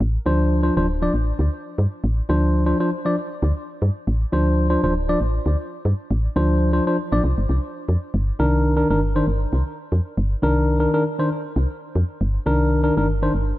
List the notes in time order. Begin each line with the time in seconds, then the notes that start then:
0.00 A1
0.26 D2 F3 D4 C5
0.63 F3 D4 C5
0.77 D1 F3 D4 C5
1.02 F3 D4 D5
1.14 A1
1.39 D2
1.78 G2
2.04 A1
2.29 D2 F3 D4 C5
2.66 F3 D4 C5
2.80 F3 D4 C5
3.05 F3 D4 D5
3.43 D2
3.82 G2
4.07 A1
4.32 D2 F3 D4 C5
4.69 F3 D4 C5
4.83 D1 F3 D4 C5
5.09 F3 D4 D5
5.21 A1
5.46 D2
5.85 G2
6.11 A1
6.36 D2 F3 D4 C5
6.73 F3 D4 C5
6.87 F3 D4 C5
7.12 A1 F3 D4 D5
7.24 C2
7.38 G1
7.49 C2
7.89 F2
8.14 G1
8.39 C2 D#3 D4 A#4
8.76 D#3 D4 A#4
8.90 G1 D#3 D4 A#4
9.15 D#3 D4 C5
9.27 G1
9.53 C2
9.92 F2
10.17 G1
10.43 C2 D#3 D4 A#4
10.80 D#3 D4 A#4
10.93 D#3 D4 A#4
11.19 D#3 D4 C5
11.56 C2
11.95 F2
12.21 G1
12.46 C2 D#3 D4 A#4
12.83 D#3 D4 A#4
12.97 G1 D#3 D4 A#4
13.22 D#3 D4 C5
13.34 G1